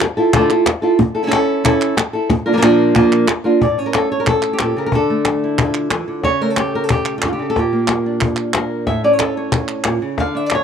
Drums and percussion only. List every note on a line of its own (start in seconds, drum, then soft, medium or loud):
0.00 cajon slap loud
0.00 clap medium
0.33 cajon bass loud
0.33 clap medium
0.50 clap medium
0.66 cajon bass medium
0.66 cajon slap medium
0.66 clap medium
0.99 cajon bass medium
1.32 cajon slap medium
1.32 clap medium
1.50 cajon slap soft
1.65 cajon bass loud
1.65 clap medium
1.81 clap medium
1.97 cajon slap medium
1.97 clap medium
2.30 cajon bass medium
2.63 cajon slap medium
2.63 clap medium
2.95 cajon bass loud
2.95 clap medium
3.12 clap medium
3.28 cajon slap medium
3.28 clap medium
3.61 cajon bass medium
3.78 cajon slap soft
3.94 cajon slap medium
3.94 clap medium
4.27 cajon bass medium
4.27 clap medium
4.42 clap medium
4.59 cajon slap medium
4.59 clap medium
4.92 cajon bass medium
5.25 cajon slap medium
5.25 clap medium
5.42 cajon slap soft
5.58 cajon bass loud
5.58 clap medium
5.74 clap medium
5.91 cajon slap medium
5.91 clap medium
6.23 cajon bass medium
6.23 cajon slap soft
6.57 cajon slap medium
6.57 clap medium
6.74 cajon slap soft
6.89 cajon bass loud
6.89 clap medium
7.05 clap medium
7.22 cajon bass medium
7.22 cajon slap medium
7.22 clap medium
7.56 cajon bass medium
7.56 cajon slap soft
7.88 cajon slap medium
7.88 clap medium
8.05 cajon slap soft
8.21 cajon bass medium
8.21 clap medium
8.36 clap medium
8.54 cajon slap medium
8.54 clap medium
8.87 cajon bass medium
8.87 cajon slap soft
9.19 cajon slap loud
9.19 clap medium
9.36 cajon slap soft
9.52 cajon bass medium
9.52 clap medium
9.68 clap medium
9.84 cajon slap medium
9.84 clap medium
10.18 cajon bass medium
10.18 cajon slap soft
10.50 cajon slap medium
10.50 clap medium